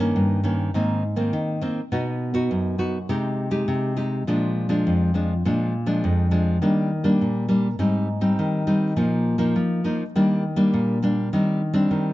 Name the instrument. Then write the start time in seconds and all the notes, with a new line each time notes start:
nylon-string guitar
Already playing: G2
0.00 D#3 A#3 C#4
0.16 G2
0.44 D#3 A#3 C#4
0.74 G#2 D#3 A#3 C4
1.16 D#3 A#3 C4
1.33 D#3
1.61 D#3 A#3 C4
1.92 B2 B3 D#4 F#4
2.34 B3 D#4 F#4
2.51 F#2
2.78 B3 D#4 F#4
3.09 C3 G#3 D#4 G4
3.51 G#3 D#4 G4
3.68 C3
3.96 G#3 D#4 G4
4.27 A#2 F3 G#3 D4
4.69 F3 G#3 D4
4.87 F2
5.14 F3 G#3 D4
5.45 A#2 F3 G#3 D4
5.86 F3 G#3 D4
6.04 F2
6.31 F3 G#3 D4
6.62 D#3 G3 A#3 D4
7.04 G3 A#3 D4
7.21 A#2
7.48 G3 A#3 D4
7.79 G#2 G3 C4 D#4
8.21 G3 C4 D#4
8.39 D#3
8.67 G3 C4 D#4
8.96 A#2 F3 A#3 D#4
9.38 F3 A#3 D#4
9.56 F3
9.84 F3 A#3 D#4
10.15 D#3 G3 A#3 D4
10.56 G3 A#3 D4
10.73 A#2
11.03 G3 A#3 D4
11.33 D#3 G3 C4 D4
11.73 G3 C4 D4
11.91 D#3